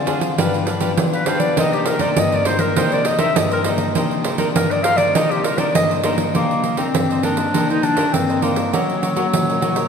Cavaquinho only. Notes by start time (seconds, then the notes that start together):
0.06 D4 G#4 C5 F5
0.20 G#4 C5 F5
0.38 D4 G4 B4 F5
0.53 G4 B4 F5
0.67 D4 G4 B4 F5
0.81 D4 G4 B4 F5
1.13 G4 B4 F5
1.26 D4 G4 B4 F5
1.56 D#4 A#4 C5 D#5
1.86 D#4 A#4 C5 D#5
1.99 D#4 A#4 C5 D#5
2.32 A#4 C5 D#5
2.45 D#4 A#4 C5 D#5
2.58 A#4 C5 D#5
2.76 D#4 A#4 C5 D#5
2.91 A#4 C5 D#5
3.05 D#4 A#4 C5 D#5
3.18 D#4 A#4 C5 D#5
3.51 A#4 C5 D#5
3.65 D#4 A#4 C5 D#5
3.95 D#4 A#4 C5 D#5
4.25 D#4 A#4 C5 D#5
4.38 D#4 A#4 C5 D#5
4.71 A#4 C5 D#5
4.84 D#4 A#4 C5 D#5
4.99 A#4 C5 D#5
5.16 D#4 A#4 C5 D#5
5.32 A#4 C5 D#5
5.44 D#4 A#4 C5 D#5
5.58 D#4 A#4 C5 D#5
5.91 A#4 C5 D#5
6.04 D#4 A#4 C5 D#5
6.34 D#4 A#4 C5 D#5
6.63 D#4 A#4 C5 D#5
6.77 D#4 A#4 C5 D#5
7.11 A#4 C5 D#5
7.24 D#4 A#4 C5 D#5
7.37 A#4 C5 D#5
7.54 D#4 A#4 C5 D#5
7.69 A#4 C5 D#5
7.82 D#4 A#4 C5 D#5
7.96 D#4 A#4 C5 D#5
8.29 A#4 C5 D#5
8.42 D#4 A#4 C5 D#5
8.73 F#4 A#4 C#5 D#5
9.02 F#4 A#4 C#5 D#5
9.16 F#4 A#4 C#5 D#5
9.49 A#4 C#5 D#5
9.61 F#4 A#4 C#5 D#5
9.75 A#4 C#5 D#5